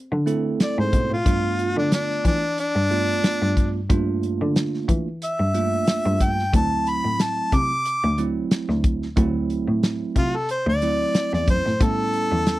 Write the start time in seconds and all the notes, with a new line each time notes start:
0.12 D3
0.26 A3 C4 E4 A4, closed hi-hat
0.60 D5, snare, closed hi-hat
0.78 G#2 C5
0.93 B2, kick, closed hi-hat
1.10 A2 F4
1.25 G2 A3 B3 D4 F4, kick, closed hi-hat
1.59 closed hi-hat
1.77 D3 D4
1.92 D4, snare, closed hi-hat
2.10 snare
2.25 E3 D4, kick, closed hi-hat
2.58 D4, closed hi-hat
2.75 G2
2.90 A3 B3 D4 F4, closed hi-hat
3.24 snare, closed hi-hat
3.42 G2, snare
3.57 kick, closed hi-hat
3.90 G2 A3 A#3 D4 F4, kick, closed hi-hat
4.23 closed hi-hat
4.41 D3
4.56 snare, closed hi-hat
4.74 snare
4.88 E3, kick, closed hi-hat
5.22 E5, closed hi-hat
5.40 G2
5.54 A3 A#3 D4 F4, closed hi-hat
5.87 snare, closed hi-hat
6.06 G2
6.21 G5, kick, closed hi-hat
6.39 snare
6.53 D2 F#3 A3 C4 E4 A5, kick, closed hi-hat
6.87 B5, closed hi-hat
7.04 A2
7.19 A5, snare, closed hi-hat
7.52 C3 D6, kick, closed hi-hat
7.85 closed hi-hat
8.04 D2
8.18 F#3 A3 C4 E4, closed hi-hat
8.51 snare, closed hi-hat
8.69 D2, snare
8.84 kick, closed hi-hat
9.02 snare
9.16 D2 F#3 A3 C4 E4, kick, closed hi-hat
9.50 closed hi-hat
9.68 A2
9.83 snare, closed hi-hat
10.16 C3 F4, kick, closed hi-hat
10.36 A4
10.49 C5, closed hi-hat
10.67 D2 D5
10.82 F#3 A3 C4 E4, closed hi-hat
11.15 snare, closed hi-hat
11.33 E2 D5, snare
11.48 F#2 C5, kick, closed hi-hat
11.65 A2, snare
11.80 A2 G3 B3 C#4 E4 A4, kick, closed hi-hat
12.14 closed hi-hat
12.32 E2
12.46 snare, closed hi-hat